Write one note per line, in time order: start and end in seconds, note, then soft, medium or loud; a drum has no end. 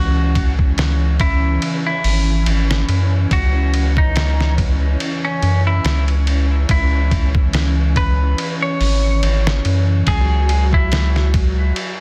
0.00 1.59 C#2 medium
0.00 10.10 E3 medium
0.00 10.10 C#4 medium
0.00 0.52 F#4 medium
0.35 kick medium
0.35 ride medium
0.59 kick medium
0.78 snare loud
0.78 ride medium
1.20 1.79 E4 loud
1.20 kick medium
1.20 ride medium
1.62 ride medium
1.86 3.17 E4 medium
2.04 2.46 G#1 medium
2.04 open hi-hat medium
2.46 2.84 G#1 medium
2.46 ride medium
2.71 snare loud
2.89 3.26 F#2 loud
2.89 ride medium
3.31 4.97 C#2 medium
3.31 3.91 F#4 medium
3.31 kick loud
3.31 ride medium
3.74 ride medium
3.97 4.53 D#4 loud
3.97 kick loud
4.16 snare loud
4.16 ride medium
4.41 snare soft
4.58 kick medium
4.58 ride medium
5.00 ride medium
5.25 5.62 C#4 medium
5.43 5.80 F#2 medium
5.43 ride medium
5.67 6.04 E4 medium
5.85 6.66 C#2 medium
5.85 snare loud
5.85 ride medium
6.08 ride soft
6.27 ride medium
6.69 8.35 C#2 loud
6.69 7.29 E4 medium
6.69 kick loud
6.69 ride medium
7.11 kick loud
7.11 ride medium
7.35 kick loud
7.53 snare loud
7.53 ride medium
7.96 8.55 B4 medium
7.96 kick medium
7.96 ride medium
8.38 ride medium
8.62 9.93 C#5 medium
8.80 9.22 G#1 medium
8.80 open hi-hat medium
9.23 9.61 G#1 loud
9.23 ride medium
9.47 snare loud
9.65 10.03 F#2 loud
9.65 ride medium
10.07 11.72 C#2 medium
10.07 12.00 F#3 medium
10.07 12.00 F#4 medium
10.07 10.66 G#4 loud
10.07 kick loud
10.07 ride medium
10.49 ride medium
10.73 11.29 E4 medium
10.73 kick medium
10.92 snare loud
10.92 ride medium
11.16 snare soft
11.34 kick medium
11.34 ride medium
11.76 ride medium